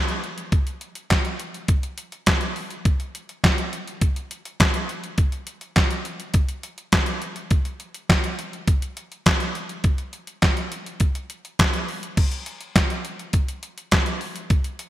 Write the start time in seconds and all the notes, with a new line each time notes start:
0.09 closed hi-hat
0.24 closed hi-hat
0.38 closed hi-hat
0.52 kick, closed hi-hat
0.67 closed hi-hat
0.81 closed hi-hat
0.95 closed hi-hat
1.10 kick, snare, clap, closed hi-hat
1.25 closed hi-hat
1.40 closed hi-hat
1.54 closed hi-hat
1.68 kick, closed hi-hat
1.83 closed hi-hat
1.98 closed hi-hat
2.12 closed hi-hat
2.26 kick, snare, clap, closed hi-hat
2.41 closed hi-hat
2.56 open hi-hat
2.71 closed hi-hat
2.85 kick, closed hi-hat
3.00 closed hi-hat
3.15 closed hi-hat
3.29 closed hi-hat
3.44 kick, snare, clap, closed hi-hat
3.58 closed hi-hat
3.73 closed hi-hat
3.88 closed hi-hat
4.01 kick, closed hi-hat
4.16 closed hi-hat
4.31 closed hi-hat
4.45 closed hi-hat
4.60 kick, snare, clap, closed hi-hat
4.74 closed hi-hat
4.89 closed hi-hat
5.04 closed hi-hat
5.18 kick, closed hi-hat
5.32 closed hi-hat
5.47 closed hi-hat
5.61 closed hi-hat
5.76 kick, snare, clap, closed hi-hat
5.91 closed hi-hat
6.05 closed hi-hat
6.20 closed hi-hat
6.34 kick, closed hi-hat
6.49 closed hi-hat
6.63 closed hi-hat
6.78 closed hi-hat
6.92 kick, snare, clap, closed hi-hat
7.06 closed hi-hat
7.22 closed hi-hat
7.36 closed hi-hat
7.51 kick, closed hi-hat
7.65 closed hi-hat
7.80 closed hi-hat
7.94 closed hi-hat
8.09 kick, snare, clap, closed hi-hat
8.24 closed hi-hat
8.39 closed hi-hat
8.53 closed hi-hat
8.67 kick, closed hi-hat
8.82 closed hi-hat
8.97 closed hi-hat
9.12 closed hi-hat
9.26 kick, snare, clap, closed hi-hat
9.40 closed hi-hat
9.55 closed hi-hat
9.69 closed hi-hat
9.84 kick, closed hi-hat
9.98 closed hi-hat
10.13 closed hi-hat
10.27 closed hi-hat
10.42 kick, snare, clap, closed hi-hat
10.57 closed hi-hat
10.72 closed hi-hat
10.86 closed hi-hat
11.00 kick, closed hi-hat
11.15 closed hi-hat
11.30 closed hi-hat
11.45 closed hi-hat
11.59 kick, snare, clap, closed hi-hat
11.73 closed hi-hat
11.88 open hi-hat
12.03 closed hi-hat
12.17 kick, closed hi-hat, crash
12.32 closed hi-hat
12.46 closed hi-hat
12.61 closed hi-hat
12.76 kick, snare, clap, closed hi-hat
12.90 closed hi-hat
13.05 closed hi-hat
13.19 closed hi-hat
13.33 kick, closed hi-hat
13.48 closed hi-hat
13.63 closed hi-hat
13.78 closed hi-hat
13.92 kick, snare, clap, closed hi-hat
14.06 closed hi-hat
14.21 open hi-hat
14.36 closed hi-hat
14.50 kick, closed hi-hat
14.64 closed hi-hat
14.79 closed hi-hat